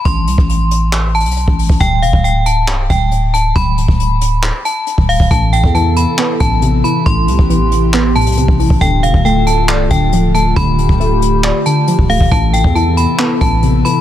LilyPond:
<<
  \new Staff \with { instrumentName = "Synth bell" } { \time 4/4 \key a \minor \tempo 4 = 137 c'''2~ c'''8 a''4. | g''8 f''8 g''8 a''4 g''4 a''8 | b''2~ b''8 a''4 f''8 | a''8 g''8 a''8 b''4 a''4 b''8 |
c'''2~ c'''8 a''4. | g''8 f''8 g''8 a''4 g''4 a''8 | b''2~ b''8 a''4 f''8 | a''8 g''8 a''8 b''4 a''4 b''8 | }
  \new Staff \with { instrumentName = "Analog synth pad" } { \time 4/4 \key a \minor << { r1 | r1 | r1 | a'1 |
g'1 | a'1 | g'1 | a'1 | } \\ { r1 | r1 | r1 | <c b e'>1~ |
<c b e'>1 | <d a f'>1~ | <d a f'>1 | <c b e'>1 | } >> }
  \new Staff \with { instrumentName = "Synth pluck" } { \clef bass \time 4/4 \key a \minor r1 | r1 | r1 | a,4 e4 b8 a,8 c8 e8 |
a,4 e4 b8 a,8 c8 e8 | d4 a4 d''8 d8 f8 a8 | d4 a4 d''8 d8 f8 a8 | a,4 e4 b8 a,8 c8 e8 | }
  \new Staff \with { instrumentName = "808-style bass" } { \clef bass \time 4/4 \key a \minor a,,8 c,16 a,,2 b,,8 a,,8 a,,16 | d,,8 e,,16 d,,4~ d,,16 c,,8 d,,4. | d,,8. d,,4. r4 d,,8 d,,16 | a,,8. e,4 r8. a,,4 r8 |
a,,8 c,16 a,,2 b,,8 a,,8 a,,16 | d,,8 e,,16 d,,4~ d,,16 c,,8 d,,4. | d,,8. d,,4. r4 d,,8 d,,16 | a,,8. e,4 r8. a,,4 r8 | }
  \new DrumStaff \with { instrumentName = "Drums" } \drummode { \time 4/4 <hh bd>8 hh16 bd16 hh8 hh8 <hc hh>8 hh32 hh32 hh32 hh32 hh16 bd16 hho16 bd16 | <hh bd>8 hh16 bd16 hh8 hh8 <hc hh>8 <hh bd>8 hh8 hh8 | <hh bd>8 hh16 bd16 hh8 hh8 <hc hh>8 hh8 hh16 bd16 hho16 bd16 | <hh bd>8 hh16 bd16 hh8 hh8 <hc hh>8 <hh bd>8 hh8 hh8 |
<hh bd>8 hh16 bd16 hh8 hh8 <hc hh>8 hh32 hh32 hh32 hh32 hh16 bd16 hho16 bd16 | <hh bd>8 hh16 bd16 hh8 hh8 <hc hh>8 <hh bd>8 hh8 hh8 | <hh bd>8 hh16 bd16 hh8 hh8 hc8 hh8 hh16 bd16 hho16 bd16 | <hh bd>8 hh16 bd16 hh8 hh8 <hc hh>8 <hh bd>8 hh8 hh8 | }
>>